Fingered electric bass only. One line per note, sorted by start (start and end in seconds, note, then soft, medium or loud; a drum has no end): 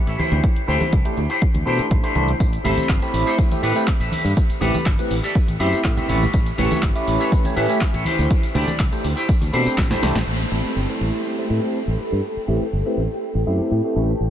0.07 0.15 A1 medium
0.19 muted fingered electric bass stroke soft
0.32 0.39 D2 loud
0.56 muted fingered electric bass stroke soft
0.68 0.76 D2 medium
0.81 muted fingered electric bass stroke soft
0.93 1.01 C2 medium
1.17 1.26 D2 medium
1.54 1.62 D2 medium
1.66 1.78 B2 medium
1.79 muted fingered electric bass stroke soft
1.91 1.99 A1 medium
2.15 2.32 C2 loud
2.40 2.57 A1 loud
2.64 2.73 A1 medium
2.77 muted fingered electric bass stroke soft
2.89 2.98 G1 medium
3.13 3.22 A1 medium
3.63 3.71 A2 medium
4.00 4.08 A1 medium
4.12 muted fingered electric bass stroke soft
4.25 4.33 G2 medium
4.49 muted fingered electric bass stroke soft
4.61 4.70 A1 loud
4.74 muted fingered electric bass stroke soft
4.86 4.95 G1 medium
5.10 5.19 A1 medium
5.48 5.56 A1 medium
5.60 5.72 F#2 medium
5.73 muted fingered electric bass stroke soft
5.85 5.93 A2 medium
6.09 6.25 A1 medium
6.34 6.50 A1 loud
6.58 6.67 A1 loud
6.71 muted fingered electric bass stroke soft
6.83 6.91 G1 medium
7.07 7.16 A1 medium
7.57 7.65 A2 medium
7.94 8.02 A1 medium
8.06 muted fingered electric bass stroke soft
8.19 8.26 D2 loud
8.43 muted fingered electric bass stroke soft
8.55 8.63 D2 loud
8.68 muted fingered electric bass stroke soft
8.80 8.88 C2 medium
9.04 9.13 D2 medium
9.42 9.49 D2 medium
9.53 9.66 B2 medium
9.66 muted fingered electric bass stroke soft
9.78 9.94 A1 loud
10.03 10.11 C2 medium
10.15 10.23 A1 medium
10.27 10.43 A1 medium
10.51 10.60 A1 medium
10.64 muted fingered electric bass stroke soft
10.76 10.85 G1 medium
11.01 11.09 A1 medium
11.50 11.58 A2 medium
11.87 11.95 A1 medium
11.99 muted fingered electric bass stroke soft
12.12 12.20 G2 medium
12.37 muted fingered electric bass stroke soft
12.48 12.57 A1 medium
12.61 muted fingered electric bass stroke soft
12.73 12.81 G1 medium
12.97 13.06 A1 medium
13.35 13.43 A1 medium
13.47 13.59 F#2 medium
13.59 muted fingered electric bass stroke soft
13.71 13.80 A2 medium
13.96 14.12 A1 loud
14.20 14.30 A1 medium